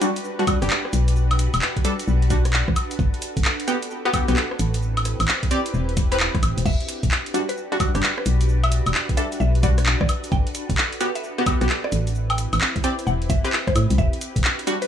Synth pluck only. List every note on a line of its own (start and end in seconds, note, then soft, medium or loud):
6.66 6.84 E5 loud
7.49 7.64 B4 medium
8.18 8.40 B4 medium
8.63 8.72 E5 medium
9.17 9.32 E5 medium
9.40 9.55 E5 medium
9.63 9.82 D5 medium
10.01 10.16 D5 medium
10.32 10.51 G5 loud
11.15 11.31 E5 medium
11.84 12.07 D5 loud
12.30 12.38 G5 medium
12.84 12.99 G5 medium
13.07 13.21 F#5 medium
13.30 13.48 E5 medium
13.67 13.83 C5 medium
13.98 14.17 E5 loud
14.82 14.87 B4 loud